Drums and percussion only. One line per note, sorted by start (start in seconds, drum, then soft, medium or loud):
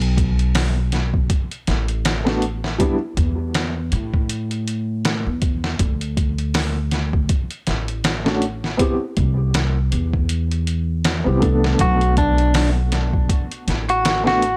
0.02 closed hi-hat soft
0.17 kick medium
0.17 closed hi-hat medium
0.39 closed hi-hat soft
0.55 snare loud
0.55 open hi-hat medium
0.92 snare soft
0.92 closed hi-hat medium
1.14 kick medium
1.30 kick loud
1.30 closed hi-hat medium
1.51 closed hi-hat soft
1.67 snare soft
1.67 closed hi-hat medium
1.88 closed hi-hat soft
2.05 snare loud
2.05 closed hi-hat medium
2.27 snare soft
2.42 closed hi-hat medium
2.64 snare soft
2.80 kick loud
2.80 closed hi-hat medium
3.17 kick medium
3.17 closed hi-hat medium
3.54 snare loud
3.54 closed hi-hat medium
3.92 closed hi-hat medium
4.14 kick medium
4.29 closed hi-hat medium
4.51 closed hi-hat soft
4.68 closed hi-hat medium
5.05 snare loud
5.05 closed hi-hat medium
5.42 kick medium
5.42 closed hi-hat medium
5.64 snare soft
5.79 kick loud
5.79 closed hi-hat medium
6.01 closed hi-hat soft
6.17 kick medium
6.17 closed hi-hat medium
6.38 closed hi-hat soft
6.54 snare loud
6.54 open hi-hat medium
6.91 snare soft
6.91 closed hi-hat medium
7.13 kick medium
7.29 kick loud
7.29 closed hi-hat medium
7.51 closed hi-hat soft
7.67 snare soft
7.67 closed hi-hat medium
7.88 closed hi-hat soft
8.04 snare loud
8.04 closed hi-hat medium
8.26 snare soft
8.42 closed hi-hat medium
8.64 snare soft
8.79 kick loud
8.79 closed hi-hat medium
9.17 kick loud
9.17 closed hi-hat medium
9.54 snare loud
9.54 closed hi-hat medium
9.92 closed hi-hat medium
10.13 kick medium
10.29 closed hi-hat medium
10.51 closed hi-hat soft
10.67 closed hi-hat medium
11.04 snare loud
11.04 closed hi-hat medium
11.42 kick medium
11.42 closed hi-hat medium
11.64 snare soft
11.79 kick loud
11.79 closed hi-hat medium
12.01 closed hi-hat soft
12.17 kick medium
12.17 closed hi-hat medium
12.38 closed hi-hat soft
12.54 snare loud
12.54 open hi-hat medium
12.92 snare soft
12.92 closed hi-hat medium
13.13 kick medium
13.29 kick loud
13.29 closed hi-hat medium
13.52 closed hi-hat soft
13.68 snare soft
13.68 closed hi-hat medium
13.89 closed hi-hat soft
14.05 snare loud
14.05 closed hi-hat medium
14.27 snare soft
14.42 closed hi-hat medium